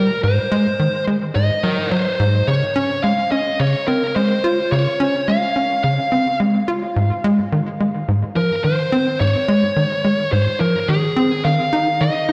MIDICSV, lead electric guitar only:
0, 0, Header, 1, 2, 480
1, 0, Start_track
1, 0, Key_signature, -5, "major"
1, 0, Tempo, 560748
1, 198, Time_signature, 4, 2, 24, 8
1, 10547, End_track
2, 0, Start_track
2, 0, Title_t, "Lead electric guitar"
2, 0, Program_c, 0, 29
2, 0, Note_on_c, 0, 70, 83
2, 165, Note_off_c, 0, 70, 0
2, 200, Note_on_c, 0, 72, 85
2, 885, Note_off_c, 0, 72, 0
2, 1158, Note_on_c, 0, 75, 104
2, 1399, Note_on_c, 0, 70, 83
2, 1635, Note_off_c, 0, 70, 0
2, 1638, Note_on_c, 0, 72, 87
2, 1654, Note_off_c, 0, 75, 0
2, 1654, Note_on_c, 0, 73, 104
2, 1844, Note_off_c, 0, 73, 0
2, 2117, Note_on_c, 0, 73, 94
2, 2132, Note_off_c, 0, 72, 0
2, 2595, Note_off_c, 0, 73, 0
2, 2598, Note_on_c, 0, 77, 100
2, 2834, Note_off_c, 0, 77, 0
2, 2838, Note_on_c, 0, 75, 93
2, 3079, Note_on_c, 0, 73, 96
2, 3085, Note_off_c, 0, 75, 0
2, 3316, Note_off_c, 0, 73, 0
2, 3319, Note_on_c, 0, 70, 84
2, 3555, Note_off_c, 0, 70, 0
2, 3559, Note_on_c, 0, 72, 90
2, 4035, Note_off_c, 0, 72, 0
2, 4038, Note_on_c, 0, 73, 95
2, 4518, Note_on_c, 0, 77, 94
2, 4533, Note_off_c, 0, 73, 0
2, 4989, Note_off_c, 0, 77, 0
2, 4999, Note_on_c, 0, 77, 87
2, 5445, Note_off_c, 0, 77, 0
2, 7157, Note_on_c, 0, 70, 80
2, 7394, Note_off_c, 0, 70, 0
2, 7397, Note_on_c, 0, 72, 83
2, 7874, Note_off_c, 0, 72, 0
2, 7878, Note_on_c, 0, 73, 90
2, 8834, Note_off_c, 0, 73, 0
2, 8838, Note_on_c, 0, 72, 89
2, 9061, Note_off_c, 0, 72, 0
2, 9077, Note_on_c, 0, 70, 84
2, 9317, Note_on_c, 0, 68, 83
2, 9325, Note_off_c, 0, 70, 0
2, 9797, Note_on_c, 0, 77, 101
2, 9812, Note_off_c, 0, 68, 0
2, 10277, Note_on_c, 0, 75, 95
2, 10292, Note_off_c, 0, 77, 0
2, 10547, Note_off_c, 0, 75, 0
2, 10547, End_track
0, 0, End_of_file